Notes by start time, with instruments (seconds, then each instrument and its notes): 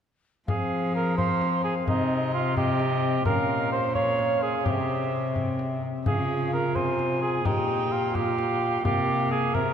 0.47 cello F3, trombone C4, cor anglais G#4, recorder F5, frame drum
0.95 cor anglais A#4
1.18 trombone C4, cor anglais C5, recorder F5, frame drum
1.42 frame drum
1.64 cor anglais G#4
1.87 cello C3, trombone C4, cor anglais D#4, recorder D#5, frame drum
2.34 cor anglais F4
2.57 trombone C4, cor anglais G4, recorder D#5, frame drum
2.79 frame drum
3.25 cello A#2, trombone C#4, cor anglais A#4, recorder F5, frame drum
3.72 cor anglais C5
3.95 trombone C#4, cor anglais C#5, recorder F5, frame drum
4.19 frame drum
4.42 cor anglais G#4
4.65 cello C3, trombone C4, cor anglais G4, recorder F5, frame drum
4.70 recorder E5
5.36 frame drum
5.59 frame drum
6.06 cello C#3, trombone F4, cor anglais G#4, recorder F5, frame drum
6.53 cor anglais A#4
6.75 cello C3, cor anglais C5, recorder G#5, frame drum
6.99 frame drum
7.22 cor anglais G#4
7.45 cello A#2, cor anglais D#4, trombone G4, recorder G5, frame drum
7.92 cor anglais F4
8.14 trombone F4, cor anglais G4, recorder F5, frame drum
8.39 frame drum
8.84 cello C3, trombone A#3, cor anglais G4, recorder F5, frame drum
9.31 cor anglais G#4
9.54 cello C3, trombone C4, cor anglais A#4, recorder E5, frame drum